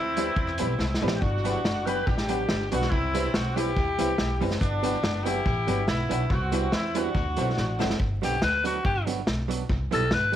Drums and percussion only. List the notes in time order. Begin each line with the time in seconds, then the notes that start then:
0.17 closed hi-hat
0.36 kick
0.47 cross-stick
0.58 closed hi-hat
0.79 snare
0.94 snare
1.08 snare
1.22 kick
1.45 closed hi-hat
1.65 snare
1.87 closed hi-hat
2.07 kick
2.18 snare
2.29 closed hi-hat
2.49 snare
2.72 closed hi-hat
2.81 snare
2.92 kick
3.15 closed hi-hat
3.34 snare
3.57 closed hi-hat
3.77 kick
3.99 closed hi-hat
4.18 snare
4.41 open hi-hat
4.51 snare
4.61 kick, hi-hat pedal
4.83 closed hi-hat
5.04 snare
5.26 closed hi-hat
5.46 kick
5.68 closed hi-hat
5.88 snare
6.11 closed hi-hat
6.30 kick
6.52 closed hi-hat
6.72 snare
6.95 closed hi-hat
7.15 kick
7.37 closed hi-hat
7.57 snare
7.80 snare
7.90 snare
8.00 kick
8.23 closed hi-hat
8.42 snare
8.65 closed hi-hat
8.85 kick
9.07 closed hi-hat
9.27 snare
9.51 closed hi-hat
9.69 kick
9.92 closed hi-hat
10.11 snare